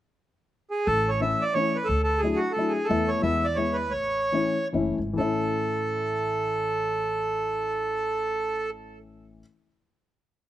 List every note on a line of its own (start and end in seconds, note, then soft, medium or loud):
0.71 0.87 G#4 medium
0.87 1.31 A1 medium
0.87 1.10 A4 medium
1.09 1.21 C#5 medium
1.20 1.39 E3 medium
1.20 1.39 A3 soft
1.20 1.39 C#4 soft
1.20 1.40 E4 medium
1.20 1.44 E5 medium
1.41 1.54 D5 medium
1.53 1.73 E3 soft
1.53 1.73 A3 soft
1.53 1.74 C#4 medium
1.53 1.74 E4 soft
1.53 1.77 C#5 medium
1.76 1.88 B4 medium
1.85 2.02 A4 medium
1.89 2.33 D2 medium
2.03 2.21 A4 medium
2.18 2.39 G#4 medium
2.23 2.41 F#3 medium
2.23 2.41 A3 soft
2.23 2.41 D4 soft
2.23 2.41 E4 medium
2.36 2.52 F#4 medium
2.52 2.73 A4 medium
2.56 2.74 F#3 medium
2.56 2.74 A3 soft
2.56 2.75 D4 soft
2.56 2.75 E4 medium
2.68 2.87 G#4 medium
2.84 3.10 A4 medium
2.89 3.12 E2 medium
2.89 3.17 E3 medium
2.89 3.17 A3 medium
2.89 3.17 B3 medium
2.89 3.18 E4 medium
3.08 3.22 C#5 medium
3.22 3.95 E2 medium
3.22 3.41 E3 medium
3.22 3.41 G#3 soft
3.22 3.42 B3 medium
3.22 3.42 E4 medium
3.22 3.46 E5 medium
3.44 3.58 D5 medium
3.55 3.77 E3 medium
3.55 3.77 G#3 soft
3.55 3.78 B3 soft
3.55 3.78 E4 medium
3.55 3.77 C#5 medium
3.73 3.93 B4 medium
3.91 4.68 C#5 medium
3.95 4.46 A1 medium
4.32 4.54 E3 medium
4.32 4.54 A3 soft
4.32 4.55 C#4 soft
4.32 4.55 E4 medium
4.73 4.95 F#1 medium
4.73 4.97 E3 medium
4.73 4.97 A3 medium
4.73 4.97 C#4 medium
4.73 4.98 E4 medium
4.98 5.17 G#1 medium
5.13 9.38 E3 medium
5.13 9.40 A3 soft
5.17 9.41 A1 medium
5.17 9.41 C#4 medium
5.17 9.42 E4 medium
5.17 8.70 A4 medium